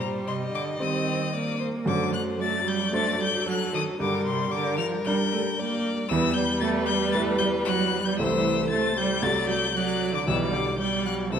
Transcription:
Already playing: G2 G3 C5
0.00 A#2 A#5
0.26 C3 D#5 C6
0.53 D3 D6
0.79 D#3 G3 C4 C5 D#6
1.34 A#3 D5
1.60 C5
1.85 F#2 D3 A3 C5 D6
2.11 F#3 F#6
2.40 F#3 A3 D5 A6
2.66 G3 G6
2.92 F#3 A3 D4 C5 A6
3.20 G3 G6
3.46 F#3 A4 F#6
3.73 D#3 D#6
4.00 G2 D3 G3 A#4 D6
4.25 C3 C6
4.52 D3 A#4 D6
4.78 F3 F6
5.04 G3 D4 A#4 G6
5.32 A3
5.58 A#3 D5
6.09 E2 E3 G3 B4 E6
6.34 G3 G6
6.61 A3 A6
6.86 G3 G6
7.12 G3 A3 E4 B4 A6
7.38 G3 G6
7.65 F#3 F#6
8.04 G3 G6
8.18 C2 E3 A3 E4 C5 E6
8.70 A3 C5 A6
8.98 G3 G6
9.22 C2 F#3 A3 F#4 D5 A6
9.48 G3 G6
9.74 F#3 D5 F#6
10.15 D3 D6
10.26 B1 E3 G3 B3 G4 D5 E6
10.52 D3 D6
10.78 G3 D5 G6
11.06 F#3 F#6
11.32 C2 E3 A3 E4 A4 C5 E6

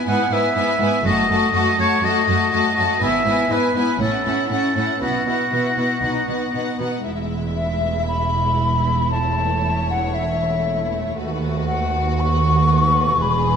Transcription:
0.06 G#2 B3 E4 F#5 G#5
0.30 G#2 B3 E4 E5 G#5
0.55 G#2 B3 E4 G#5
0.79 G#2 B3 E4 G#5
1.04 F#1 F#2 A3 F#4 D#5 A5
1.29 F#2 A3 F#4 A5
1.53 F#2 A3 F#4 A5
1.78 F#2 A3 F#4 C#5 A5
2.02 F#2 A3 F#4 D#5 A5
2.27 F#2 A3 F#4 A5
2.51 F#2 A3 F#4 A5
2.76 F#2 A3 F#4 A5
3.00 G#1 G#2 B3 E4 E5 G#5
3.24 G#2 B3 E4 G#5
3.49 G#2 B3 E4 B4 G#5
3.74 G#2 B3 E4 G#5
3.99 A1 A2 C#4 E4 A4 F#5
4.25 A2 C#4 E4 F#5
4.49 A2 C#4 E4 A4 F#5
4.75 A2 C#4 E4 F#5
5.00 B1 B2 B3 E4 F#4 F#5
5.25 B2 B3 E4 F#5
5.51 B2 B3 E4 F#5
5.77 B2 B3 E4 F#5
6.02 B1 B2 B3 D#4 F#5
6.28 B2 B3 D#4 F#5
6.52 B2 B3 D#4 F#5
6.78 B2 B3 D#4 F#5
7.03 E1 E2 G#3 E4 E5
7.55 E5
8.08 B5
9.12 A3 C#5 A5
9.90 F#5
10.14 E5
11.17 D#2 F#4 B4
11.67 F#5
12.20 C#6
13.21 E1 E2 G#3 G#4 B5

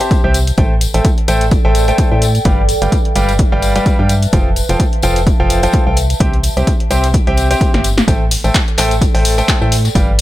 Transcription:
Already playing: B4 E5 A5
0.01 C4 G4 C5 E5 A5, closed hi-hat
0.11 kick, closed hi-hat, tambourine
0.24 C2 C4 G4 C5 E5 G5
0.34 closed hi-hat, tambourine
0.47 closed hi-hat, tambourine
0.58 A1 A3 A4 C5 E5 G5, kick, closed hi-hat
0.76 D5
0.81 closed hi-hat, tambourine
0.94 A1 A3 A4 C5 E5 G5, closed hi-hat, tambourine
1.05 G5, kick, closed hi-hat, tambourine
1.18 closed hi-hat
1.28 A1 A3 A4 C5 E5 G5, closed hi-hat, tambourine
1.41 closed hi-hat, tambourine
1.51 kick, closed hi-hat, tambourine
1.65 A1 A3 A4 C5 E5 G5
1.75 closed hi-hat, tambourine
1.88 A3 A4 C5 E5 G5, closed hi-hat, tambourine
1.98 kick, closed hi-hat, tambourine
2.12 A2 A3 A4 C5 E5 G5
2.22 closed hi-hat, tambourine
2.35 closed hi-hat, tambourine
2.45 G1 G3 B4 D5 F5 G5, kick, closed hi-hat, tambourine
2.55 E5
2.69 closed hi-hat, tambourine
2.82 G1 G3 B4 D5 F5 G5, closed hi-hat, tambourine
2.92 kick, closed hi-hat, tambourine
3.05 closed hi-hat
3.16 G1 G3 B4 D5 F5 G5, closed hi-hat, tambourine
3.29 A5, closed hi-hat, tambourine
3.39 kick, closed hi-hat
3.52 G1 G3 B4 D5 F5 G5
3.62 closed hi-hat, tambourine
3.76 G3 B4 D5 F5 G5, closed hi-hat, tambourine
3.86 kick, closed hi-hat, tambourine
3.99 G2 G3 B4 D5 F5 G5
4.09 closed hi-hat, tambourine
4.22 closed hi-hat, tambourine
4.33 F1 F3 A4 C5 F5 G5, kick, closed hi-hat, tambourine
4.56 closed hi-hat, tambourine
4.69 F1 F3 A4 C5 F5 G5, closed hi-hat, tambourine
4.79 kick, closed hi-hat, tambourine
4.93 closed hi-hat
5.02 F1 F3 A4 C5 F5 G5, closed hi-hat, tambourine
5.16 closed hi-hat, tambourine
5.27 kick, closed hi-hat, tambourine
5.40 F1 F3 A4 C5 F5 G5
5.50 closed hi-hat, tambourine
5.63 F3 A4 C5 F5 G5, closed hi-hat, tambourine
5.73 kick, closed hi-hat, tambourine
5.87 C2 A4 C5 F5 G5
5.97 closed hi-hat, tambourine
6.10 closed hi-hat, tambourine
6.20 C2 C4 G4 C5 E5 G5, kick, closed hi-hat
6.34 closed hi-hat
6.43 closed hi-hat, tambourine
6.57 C2 C4 G4 C5 E5 G5, closed hi-hat, tambourine
6.67 kick, closed hi-hat, tambourine
6.80 closed hi-hat
6.91 C2 C4 G4 C5 E5 G5, closed hi-hat, tambourine
7.04 closed hi-hat, tambourine
7.14 kick, closed hi-hat, tambourine
7.27 C2 C4 G4 C5 E5 G5, closed hi-hat
7.37 closed hi-hat, tambourine
7.51 C4 G4 C5 E5 G5, closed hi-hat, tambourine
7.61 kick, closed hi-hat
7.74 G1 C4 G4 C5 E5 G5, snare, closed hi-hat
7.84 closed hi-hat, tambourine
7.98 snare, closed hi-hat, tambourine
8.08 A1 A3 A4 C5 E5 G5, kick, closed hi-hat, tambourine
8.29 G5, open hi-hat, tambourine
8.44 A1 A3 A4 C5 E5 G5, closed hi-hat, tambourine
8.55 D5, kick, snare, clap, closed hi-hat, tambourine
8.68 closed hi-hat, tambourine
8.78 A1 A3 A4 C5 E5 G5, clap, closed hi-hat, open hi-hat, tambourine
8.91 closed hi-hat, tambourine
9.01 kick, closed hi-hat, tambourine
9.15 A1 A3 A4 C5 E5 G5, snare, open hi-hat
9.25 closed hi-hat, open hi-hat, tambourine
9.38 A3 A4 C5 E5 G5, closed hi-hat, tambourine
9.48 kick, snare, clap, closed hi-hat, tambourine
9.61 A2 A3 A4 C5 E5 G5, tambourine
9.72 closed hi-hat, open hi-hat, tambourine
9.85 snare, closed hi-hat, tambourine
9.95 G1 G3 B4 D5 F5 G5, kick, closed hi-hat, tambourine
10.12 A5

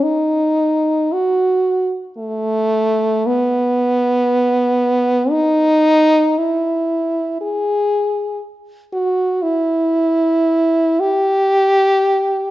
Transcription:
0.03 D#4
1.13 F#4
2.18 A3
3.27 B3
5.30 D#4
6.38 E4
7.41 G#4
8.93 F#4
9.43 E4
11.00 G4

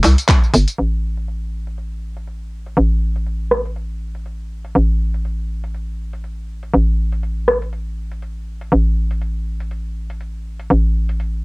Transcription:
0.04 C2, clap, open hi-hat, tambourine
0.18 closed hi-hat, tambourine
0.28 kick, clap, open hi-hat, tambourine
0.44 tambourine
0.54 G1, open hi-hat, tambourine
0.68 closed hi-hat, tambourine
0.78 A1, closed hi-hat
1.17 closed hi-hat
1.28 closed hi-hat
1.67 closed hi-hat
1.78 closed hi-hat
2.17 closed hi-hat
2.27 closed hi-hat
2.66 closed hi-hat
2.77 A1, closed hi-hat
3.16 closed hi-hat
3.27 closed hi-hat
3.51 cross-stick
3.65 closed hi-hat
3.76 closed hi-hat
4.15 closed hi-hat
4.26 closed hi-hat
4.65 closed hi-hat
4.75 A1, closed hi-hat
5.14 closed hi-hat
5.25 closed hi-hat
5.64 closed hi-hat
5.74 closed hi-hat
6.13 closed hi-hat
6.24 closed hi-hat
6.63 closed hi-hat
6.74 A1, closed hi-hat
7.12 closed hi-hat
7.23 closed hi-hat
7.48 cross-stick
7.62 closed hi-hat
7.73 closed hi-hat
8.12 closed hi-hat
8.22 closed hi-hat
8.61 closed hi-hat
8.72 A1, closed hi-hat
9.11 closed hi-hat
9.21 closed hi-hat
9.60 closed hi-hat
9.71 closed hi-hat
10.10 closed hi-hat
10.21 closed hi-hat
10.60 closed hi-hat
10.70 A1, closed hi-hat
11.09 closed hi-hat
11.20 closed hi-hat

